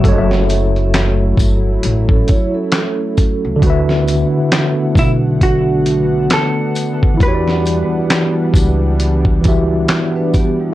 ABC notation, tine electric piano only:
X:1
M:4/4
L:1/8
Q:"Swing 16ths" 1/4=67
K:D
V:1 name="Tine electric piano"
[F,FAc^de]8 | [D,DFBe]8 | [E,EFGcd]4- [E,EFGcd] [E,EFGe]3 |]